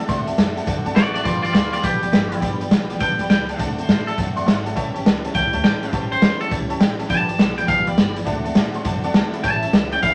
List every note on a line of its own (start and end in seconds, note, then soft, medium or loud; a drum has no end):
0.07 0.32 D2 medium
0.07 0.27 D3 medium
0.07 0.27 A3 loud
0.07 0.27 C4 medium
0.07 0.25 F#4 loud
0.07 0.20 D5 loud
0.07 0.20 F#5 loud
0.07 0.20 C6 loud
0.07 kick loud
0.07 closed hi-hat medium
0.26 0.36 A3 medium
0.26 0.37 C4 medium
0.26 0.37 F#4 medium
0.26 0.34 D5 medium
0.26 0.34 F#5 medium
0.26 0.34 A5 medium
0.26 closed hi-hat medium
0.36 0.61 F#2 medium
0.36 0.56 D3 medium
0.36 0.57 A3 medium
0.36 0.55 C4 medium
0.36 0.54 F#4 medium
0.36 0.49 D5 medium
0.36 0.49 F#5 medium
0.36 0.49 A5 loud
0.36 snare loud
0.36 closed hi-hat medium
0.55 0.65 A3 soft
0.55 0.66 C4 soft
0.55 0.66 F#4 medium
0.55 0.63 D5 medium
0.55 0.63 F#5 medium
0.55 0.63 A5 medium
0.55 closed hi-hat medium
0.66 0.82 F#2 medium
0.66 0.85 D3 loud
0.66 0.86 A3 loud
0.66 0.85 C4 medium
0.66 0.83 F#4 loud
0.66 0.78 D5 medium
0.66 0.78 F#5 medium
0.66 0.78 A5 loud
0.66 kick loud
0.66 closed hi-hat medium
0.84 0.94 G2 medium
0.84 0.96 A3 medium
0.84 0.97 C4 medium
0.84 0.96 F#4 medium
0.84 0.92 D5 loud
0.84 0.92 F#5 loud
0.84 0.92 A5 loud
0.84 closed hi-hat medium
0.95 1.19 A1 medium
0.95 1.15 D3 medium
0.95 1.16 A3 medium
0.95 1.13 F#4 medium
0.95 1.13 D5 loud
0.95 1.08 D5 medium
0.95 1.08 F#5 medium
0.95 1.08 A5 loud
0.95 snare loud
0.95 closed hi-hat medium
1.14 1.25 A3 soft
1.14 1.26 C4 medium
1.14 1.25 F#4 medium
1.14 1.24 F#4 medium
1.14 1.23 D5 medium
1.14 1.21 D5 medium
1.14 1.22 F#5 medium
1.14 1.22 A5 medium
1.14 closed hi-hat medium
1.24 1.48 G1 medium
1.24 1.44 G2 medium
1.24 1.44 D3 medium
1.24 1.44 F3 medium
1.24 1.44 G3 medium
1.24 1.44 B3 medium
1.24 1.41 F4 medium
1.24 1.42 G4 medium
1.24 1.42 D5 medium
1.24 1.36 D5 loud
1.24 1.37 G5 medium
1.24 1.36 B5 loud
1.24 kick loud
1.24 closed hi-hat medium
1.42 1.53 G3 soft
1.42 1.54 B3 medium
1.42 1.51 F4 medium
1.42 1.54 G4 medium
1.42 1.52 D5 loud
1.42 1.50 D5 medium
1.42 1.50 G5 medium
1.42 closed hi-hat medium
1.46 1.52 F3 soft
1.53 1.77 D2 medium
1.53 1.73 F3 medium
1.53 1.72 G3 medium
1.53 1.71 B3 medium
1.53 1.71 F4 medium
1.53 1.70 G4 medium
1.53 1.72 D5 loud
1.53 1.66 D5 medium
1.53 1.66 G5 medium
1.53 1.66 B5 medium
1.53 snare loud
1.53 closed hi-hat medium
1.71 1.82 F3 soft
1.71 1.82 G3 soft
1.71 1.83 B3 medium
1.71 1.83 F4 medium
1.71 1.83 G4 medium
1.71 1.79 D5 medium
1.71 1.84 D5 medium
1.71 1.80 G5 medium
1.71 closed hi-hat medium
1.82 2.07 B1 medium
1.82 2.02 G2 medium
1.82 2.02 D3 medium
1.82 2.02 F3 medium
1.82 2.03 G3 medium
1.82 2.02 B3 medium
1.82 2.40 G4 loud
1.82 2.00 G4 medium
1.82 1.95 D5 medium
1.82 1.95 G5 medium
1.82 1.95 B5 medium
1.82 kick loud
1.82 closed hi-hat medium
2.02 2.11 F3 soft
2.02 2.12 G3 soft
2.02 2.13 B3 medium
2.02 2.13 G4 medium
2.02 2.09 D5 medium
2.02 2.09 G5 medium
2.02 2.09 B5 loud
2.02 closed hi-hat medium
2.12 2.36 G1 medium
2.12 2.31 F3 medium
2.12 2.31 G3 medium
2.12 2.30 B3 medium
2.12 2.29 G4 medium
2.12 2.24 D5 medium
2.12 2.24 G5 medium
2.12 2.24 D6 loud
2.12 snare loud
2.12 closed hi-hat medium
2.30 2.40 F3 soft
2.30 2.41 G3 medium
2.30 2.41 B3 medium
2.30 2.41 G4 medium
2.30 2.37 D5 medium
2.30 2.38 G5 medium
2.30 2.38 B5 loud
2.30 closed hi-hat medium
2.40 2.65 G1 loud
2.40 2.60 G2 medium
2.40 2.60 D3 medium
2.40 2.61 F3 loud
2.40 2.61 G3 loud
2.40 2.60 B3 medium
2.40 2.59 G4 medium
2.40 2.52 D5 loud
2.40 2.53 G5 loud
2.40 2.53 B5 loud
2.40 kick loud
2.40 closed hi-hat medium
2.60 2.70 F3 soft
2.60 2.71 G3 medium
2.60 2.71 B3 medium
2.60 2.71 G4 medium
2.60 2.67 D5 medium
2.60 2.67 G5 medium
2.60 2.67 B5 medium
2.60 closed hi-hat medium
2.71 2.94 B1 medium
2.71 2.90 F3 medium
2.71 2.90 G3 medium
2.71 2.89 B3 medium
2.71 2.88 G4 medium
2.71 2.83 D5 medium
2.71 2.83 G5 medium
2.71 2.83 B5 loud
2.71 snare loud
2.71 closed hi-hat medium
2.90 3.00 F3 soft
2.90 3.00 G3 soft
2.90 3.01 B3 soft
2.90 3.00 G4 medium
2.90 2.97 D5 medium
2.90 2.97 G5 medium
2.90 2.97 B5 medium
2.90 closed hi-hat medium
3.00 3.15 B1 medium
3.00 3.19 G2 medium
3.00 3.19 D3 medium
3.00 3.20 F3 medium
3.00 3.20 G3 loud
3.00 3.18 B3 medium
3.00 3.17 G4 medium
3.00 3.12 D5 medium
3.00 3.29 G5 loud
3.00 3.13 G5 medium
3.00 3.12 A5 medium
3.00 kick loud
3.00 closed hi-hat medium
3.18 3.27 C2 medium
3.18 3.28 F3 soft
3.18 3.30 G3 medium
3.18 3.30 B3 soft
3.18 3.29 G4 medium
3.18 3.26 D5 loud
3.18 3.26 G5 medium
3.18 3.27 B5 loud
3.18 closed hi-hat medium
3.30 3.53 C#2 medium
3.30 3.48 F3 medium
3.30 3.49 G3 medium
3.30 3.48 B3 medium
3.30 3.48 G4 medium
3.30 3.41 D5 medium
3.30 3.59 G5 loud
3.30 3.41 B5 loud
3.30 snare loud
3.30 closed hi-hat medium
3.49 3.58 F3 soft
3.49 3.59 G3 medium
3.49 3.60 B3 soft
3.49 3.59 G4 medium
3.49 3.55 D5 medium
3.49 3.55 G5 medium
3.49 3.55 A5 medium
3.49 closed hi-hat medium
3.59 3.82 D2 medium
3.59 3.78 D3 medium
3.59 3.78 A3 medium
3.59 3.77 C4 medium
3.59 3.76 F#4 medium
3.59 3.70 D5 loud
3.59 3.79 D5 loud
3.59 3.71 F#5 medium
3.59 3.71 A5 loud
3.59 kick loud
3.59 closed hi-hat medium
3.77 3.88 A3 soft
3.77 3.88 C4 medium
3.77 3.88 F#4 medium
3.77 4.07 C5 loud
3.77 3.85 D5 medium
3.77 3.85 F#5 medium
3.77 3.85 A5 medium
3.77 closed hi-hat medium
3.87 4.11 A2 medium
3.87 4.06 D3 medium
3.87 4.07 A3 medium
3.87 4.07 C4 medium
3.87 4.05 F#4 medium
3.87 3.99 D5 medium
3.87 3.99 F#5 medium
3.87 4.00 A5 medium
3.87 snare loud
3.87 closed hi-hat medium
4.07 4.17 A3 soft
4.07 4.18 C4 medium
4.07 4.17 F#4 soft
4.07 4.17 A4 loud
4.07 4.13 D5 medium
4.07 4.14 F#5 medium
4.07 4.14 A5 medium
4.07 closed hi-hat medium
4.18 4.41 F#2 medium
4.18 4.36 D3 medium
4.18 4.37 A3 medium
4.18 4.37 C4 medium
4.18 4.35 F#4 medium
4.18 4.29 D5 medium
4.18 4.29 F#5 medium
4.18 4.29 A5 medium
4.18 kick loud
4.18 closed hi-hat medium
4.36 4.47 A3 soft
4.36 4.48 C4 medium
4.36 4.47 F#4 medium
4.36 4.42 D5 loud
4.36 4.42 F#5 loud
4.36 4.43 C6 loud
4.36 closed hi-hat medium
4.46 4.77 G#1 medium
4.46 4.65 D3 medium
4.46 4.66 A3 medium
4.46 4.66 C4 medium
4.46 4.58 D5 loud
4.46 4.58 F#5 loud
4.46 4.58 C6 loud
4.46 snare loud
4.46 closed hi-hat medium
4.50 4.64 F#4 medium
4.65 4.76 A3 medium
4.65 4.77 C4 medium
4.65 4.76 F#4 medium
4.65 4.72 D5 medium
4.65 4.72 F#5 medium
4.65 4.72 A5 loud
4.65 closed hi-hat medium
4.75 4.99 A1 loud
4.75 4.94 A2 medium
4.75 4.95 E3 medium
4.75 4.95 G3 medium
4.75 4.95 C#4 medium
4.75 4.93 G4 loud
4.75 4.87 C#5 loud
4.75 4.87 E5 loud
4.75 4.87 A5 loud
4.75 kick loud
4.75 closed hi-hat medium
4.94 5.04 G3 medium
4.94 5.05 C#4 medium
4.94 5.05 G4 medium
4.94 5.01 C#5 medium
4.94 5.01 E5 medium
4.94 5.01 A5 medium
4.94 closed hi-hat medium
5.04 5.28 C#2 medium
5.04 5.24 E3 medium
5.04 5.24 G3 medium
5.04 5.23 C#4 medium
5.04 5.22 G4 medium
5.04 5.17 C#5 medium
5.04 5.17 E5 medium
5.04 5.17 A5 medium
5.04 snare loud
5.04 closed hi-hat loud
5.23 5.34 G3 medium
5.23 5.35 C#4 soft
5.23 5.34 G4 medium
5.23 5.30 C#5 medium
5.23 5.31 E5 medium
5.23 5.31 A5 loud
5.23 closed hi-hat medium
5.34 5.49 C#2 medium
5.34 5.53 A2 medium
5.34 5.53 E3 medium
5.34 5.54 G3 medium
5.34 5.53 C#4 medium
5.34 5.51 G4 medium
5.34 5.46 C#5 medium
5.34 5.46 E5 medium
5.34 5.63 G5 loud
5.34 5.46 A5 medium
5.34 kick loud
5.34 closed hi-hat medium
5.52 5.62 D2 medium
5.52 5.63 G3 soft
5.52 5.64 C#4 soft
5.52 5.63 G4 soft
5.52 5.59 C#5 loud
5.52 5.60 E5 loud
5.52 5.60 A5 loud
5.52 closed hi-hat medium
5.63 5.87 A1 medium
5.63 5.82 E3 medium
5.63 5.83 G3 medium
5.63 5.82 C#4 medium
5.63 5.75 C#5 medium
5.63 5.75 E5 medium
5.63 5.93 G5 loud
5.63 5.75 A5 loud
5.63 snare loud
5.63 closed hi-hat medium
5.82 5.93 G3 soft
5.82 5.93 C#4 soft
5.82 5.93 G4 medium
5.82 5.89 C#5 medium
5.82 5.89 E5 medium
5.82 5.89 A5 medium
5.82 closed hi-hat medium
5.92 6.16 A1 medium
5.92 6.11 A2 medium
5.92 6.12 E3 medium
5.92 6.12 G3 medium
5.92 6.12 C#4 medium
5.92 6.10 G4 medium
5.92 6.11 C5 loud
5.92 6.04 C#5 loud
5.92 6.04 E5 medium
5.92 6.04 A5 loud
5.92 kick loud
5.92 closed hi-hat medium
6.11 6.22 G3 soft
6.11 6.23 C#4 medium
6.11 6.22 G4 medium
6.11 6.40 C5 loud
6.11 6.18 C#5 medium
6.11 6.18 E5 medium
6.11 6.18 G5 medium
6.11 closed hi-hat medium
6.22 6.45 E2 medium
6.22 6.41 E3 medium
6.22 6.41 G3 medium
6.22 6.39 G4 medium
6.22 6.33 C#5 medium
6.22 6.34 E5 medium
6.22 6.34 B5 medium
6.22 snare loud
6.22 closed hi-hat medium
6.40 6.51 G3 soft
6.40 6.52 C#4 soft
6.40 6.51 G4 soft
6.40 6.51 A4 loud
6.40 6.47 C#5 medium
6.40 6.48 E5 medium
6.40 6.48 F#5 medium
6.40 closed hi-hat medium
6.51 6.74 C#2 medium
6.51 6.70 A2 medium
6.51 6.70 E3 medium
6.51 6.70 G3 medium
6.51 6.70 C#4 medium
6.51 6.68 G4 medium
6.51 6.63 C#5 medium
6.51 6.63 E5 medium
6.51 6.63 A5 medium
6.51 kick loud
6.51 closed hi-hat medium
6.69 6.80 G3 soft
6.69 6.81 C#4 medium
6.69 6.80 G4 medium
6.69 6.76 C#5 loud
6.69 6.76 E5 loud
6.69 6.76 A5 loud
6.69 closed hi-hat medium
6.79 7.03 A1 medium
6.79 6.99 E3 medium
6.79 7.00 G3 medium
6.79 6.99 C#4 medium
6.79 6.97 G4 medium
6.79 6.91 C#5 loud
6.79 6.92 E5 loud
6.79 6.92 G5 loud
6.79 snare loud
6.79 closed hi-hat medium
6.98 7.10 G3 medium
6.98 7.10 C#4 medium
6.98 7.09 G4 medium
6.98 7.05 C#5 medium
6.98 7.06 E5 medium
6.98 7.06 A5 loud
6.98 closed hi-hat medium
7.09 7.33 G1 medium
7.09 7.28 G2 medium
7.09 7.29 D3 medium
7.09 7.29 F3 medium
7.09 7.29 G3 medium
7.09 7.28 B3 medium
7.09 7.27 G4 medium
7.09 7.21 D5 loud
7.09 7.21 G5 medium
7.09 7.57 A5 loud
7.09 7.21 B5 loud
7.09 kick loud
7.09 closed hi-hat medium
7.28 7.37 F3 soft
7.28 7.38 G3 soft
7.28 7.39 B3 soft
7.28 7.39 G4 medium
7.28 7.34 D5 medium
7.28 7.35 G5 medium
7.28 7.35 D6 medium
7.28 closed hi-hat medium
7.38 7.62 B1 medium
7.38 7.57 F3 medium
7.38 7.57 G3 medium
7.38 7.56 B3 medium
7.38 7.55 G4 medium
7.38 7.50 D5 medium
7.38 7.50 G5 medium
7.38 7.50 D6 medium
7.38 snare loud
7.38 closed hi-hat medium
7.56 7.67 F3 soft
7.56 7.67 G3 soft
7.56 7.68 B3 soft
7.56 7.68 G4 medium
7.56 7.64 D5 medium
7.56 7.64 G5 medium
7.56 7.68 G5 medium
7.56 7.64 B5 medium
7.56 closed hi-hat medium
7.67 7.83 B1 medium
7.67 7.87 G2 medium
7.67 7.87 D3 medium
7.67 7.87 F3 medium
7.67 7.87 G3 medium
7.67 7.86 B3 medium
7.67 7.85 G4 medium
7.67 7.79 D5 medium
7.67 7.88 F5 loud
7.67 7.79 G5 medium
7.67 7.79 A5 medium
7.67 kick loud
7.67 closed hi-hat loud
7.86 7.95 C2 medium
7.86 7.95 F3 medium
7.86 7.96 G3 medium
7.86 7.97 B3 medium
7.86 7.97 G4 medium
7.86 7.93 D5 loud
7.86 8.16 D5 loud
7.86 7.93 G5 medium
7.86 7.94 B5 loud
7.86 closed hi-hat medium
7.96 8.21 G1 medium
7.96 8.16 F3 medium
7.96 8.15 G3 medium
7.96 8.15 B3 medium
7.96 8.14 G4 medium
7.96 8.09 D5 medium
7.96 8.09 G5 medium
7.96 8.09 B5 loud
7.96 snare loud
7.96 closed hi-hat medium
8.14 8.24 F3 soft
8.14 8.25 G3 soft
8.14 8.26 B3 medium
8.14 8.26 G4 medium
8.14 8.22 D5 medium
8.14 8.22 G5 medium
8.14 8.22 B5 medium
8.14 closed hi-hat medium
8.24 8.50 D2 medium
8.24 8.44 D3 medium
8.24 8.45 A3 medium
8.24 8.45 C4 loud
8.24 8.42 F#4 loud
8.24 8.37 D5 loud
8.24 8.37 F#5 loud
8.24 8.38 A5 loud
8.24 kick loud
8.24 closed hi-hat medium
8.44 8.54 A3 medium
8.44 8.55 C4 medium
8.44 8.55 F#4 medium
8.44 8.52 D5 medium
8.44 8.51 F#5 medium
8.44 8.52 A5 loud
8.44 closed hi-hat medium
8.55 8.79 A2 medium
8.55 8.74 D3 medium
8.55 8.74 C4 medium
8.55 8.71 F#4 medium
8.55 8.67 D5 medium
8.55 8.68 A5 medium
8.55 snare loud
8.55 closed hi-hat medium
8.73 8.84 A3 medium
8.73 8.84 C4 medium
8.73 8.84 F#4 medium
8.73 8.81 D5 medium
8.73 8.81 F#5 medium
8.73 8.82 C6 medium
8.73 closed hi-hat medium
8.84 9.08 F#2 medium
8.84 9.04 D3 medium
8.84 9.04 A3 loud
8.84 9.03 C4 medium
8.84 9.01 F#4 loud
8.84 8.97 D5 medium
8.84 8.97 F#5 medium
8.84 8.97 A5 loud
8.84 kick loud
8.84 closed hi-hat medium
9.02 9.14 A3 soft
9.02 9.15 C4 medium
9.02 9.14 F#4 medium
9.02 9.11 D5 loud
9.02 9.11 F#5 loud
9.02 9.11 A5 loud
9.02 closed hi-hat medium
9.14 9.38 D2 medium
9.14 9.33 D3 medium
9.14 9.34 A3 medium
9.14 9.33 C4 medium
9.14 9.31 F#4 medium
9.14 9.26 D5 loud
9.14 9.26 F#5 loud
9.14 9.26 A5 loud
9.14 snare loud
9.14 closed hi-hat medium
9.32 9.45 A3 soft
9.32 9.44 C4 medium
9.32 9.43 F#4 medium
9.32 9.40 D5 medium
9.32 9.40 F#5 medium
9.32 9.40 B5 loud
9.32 closed hi-hat medium
9.44 9.67 A1 loud
9.44 9.63 A2 medium
9.44 9.63 E3 medium
9.44 9.63 G3 medium
9.44 9.63 C#4 medium
9.44 9.61 E4 medium
9.44 9.55 C#5 loud
9.44 9.55 E5 medium
9.44 9.91 A5 loud
9.44 9.56 A5 loud
9.44 kick loud
9.44 closed hi-hat medium
9.62 9.73 G3 soft
9.62 9.74 C#4 medium
9.62 9.73 E4 soft
9.62 9.69 C#5 medium
9.62 9.69 E5 medium
9.62 9.70 A5 medium
9.62 closed hi-hat medium
9.73 9.97 C#2 medium
9.73 9.92 E3 medium
9.73 9.93 G3 medium
9.73 9.92 C#4 medium
9.73 9.90 E4 medium
9.73 9.85 C#5 medium
9.73 9.85 E5 medium
9.73 9.85 F#5 medium
9.73 snare loud
9.73 closed hi-hat medium
9.91 10.02 G3 soft
9.91 10.02 C#4 medium
9.91 10.02 E4 medium
9.91 9.99 C#5 medium
9.91 9.99 E5 medium
9.91 9.99 F#5 medium
9.91 10.02 G5 medium
9.91 closed hi-hat medium
10.02 10.14 C#2 medium
10.02 10.14 A2 medium
10.02 10.14 E3 medium
10.02 10.14 G3 medium
10.02 10.14 C#4 medium
10.02 10.14 E4 loud
10.02 10.14 C#5 medium
10.02 10.14 E5 medium
10.02 10.14 F5 medium
10.02 10.14 B5 medium
10.02 kick loud
10.02 closed hi-hat medium